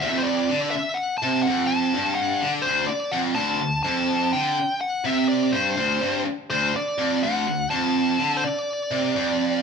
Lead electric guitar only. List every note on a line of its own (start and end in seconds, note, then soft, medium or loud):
0.00 0.18 E5 medium
0.18 0.26 C5 medium
0.23 0.69 D5 loud
0.71 0.97 E5 loud
0.94 1.17 F#5 loud
1.18 1.42 A5 medium
1.43 1.66 F#5 medium
1.67 2.13 A5 loud
2.15 2.50 F#5 medium
2.62 2.86 C5 medium
2.87 3.13 D5 medium
3.12 3.18 F#5 medium
3.35 3.82 A5 medium
3.83 4.32 A5 loud
4.33 4.80 G5 loud
4.81 5.06 F#5 medium
5.06 5.28 E5 medium
5.29 5.54 D5 medium
5.52 6.21 C5 medium
6.50 6.73 C5 medium
6.76 7.20 D5 medium
7.23 7.67 F#5 loud
7.70 8.37 A5 loud
8.37 8.43 C5 medium
8.44 9.62 D5 medium